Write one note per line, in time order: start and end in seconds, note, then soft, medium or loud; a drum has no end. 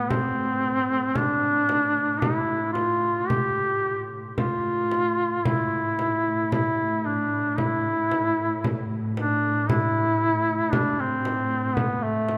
0.00 4.37 A2 soft
0.00 0.12 B3 medium
0.11 1.18 C4 medium
0.11 frame drum medium
1.15 2.22 D4 medium
1.15 frame drum medium
1.69 frame drum soft
2.20 2.72 E4 medium
2.20 frame drum medium
2.73 3.30 F4 medium
2.73 frame drum soft
3.28 4.10 G4 medium
3.28 frame drum medium
4.38 12.38 A2 soft
4.38 5.47 F4 medium
4.38 frame drum medium
4.91 frame drum soft
5.45 6.52 E4 medium
5.45 frame drum medium
5.99 frame drum soft
6.52 7.07 E4 medium
6.52 frame drum medium
7.05 7.60 D4 medium
7.58 8.90 E4 medium
7.58 frame drum medium
8.12 frame drum soft
8.64 frame drum medium
9.17 9.70 D4 medium
9.17 frame drum soft
9.69 10.74 E4 medium
9.69 frame drum medium
10.73 11.01 D4 medium
10.73 frame drum medium
11.00 11.78 C4 medium
11.25 frame drum soft
11.76 12.04 B3 medium
11.76 frame drum medium
12.03 12.38 A3 medium
12.29 frame drum soft